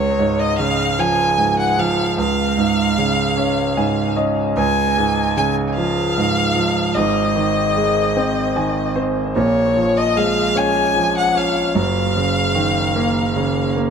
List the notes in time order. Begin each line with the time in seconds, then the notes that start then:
Already playing: C#2 C#5
0.19 G#2
0.40 D#5
0.59 C#3 F5
0.98 F3 G#5
1.38 G#2
1.59 F#5
1.78 F3 F5
2.18 C#2 F5
2.58 G#2
2.98 C#3
3.37 C#4
3.77 G#2 G#5
4.16 C#4 D#5
4.57 C#2 G#5
4.97 G#2
5.37 C#3 G#5
5.75 F3 F5
6.18 G#2
6.55 F3
6.94 G#1 G#2 D#5
7.36 D#3
7.76 G#3
8.17 C4
8.56 D#3 G#5
8.96 C4 C5
9.36 A#1 A#2 C#5
9.76 F3
9.98 D#5
10.16 G#3 F5
10.56 C#4 G#5
10.96 F3
11.18 F#5
11.35 C#4 F5
11.75 F#1 F#2 F5
12.16 C#3
12.55 D#3
12.96 A#3
13.36 C#3
13.76 A#3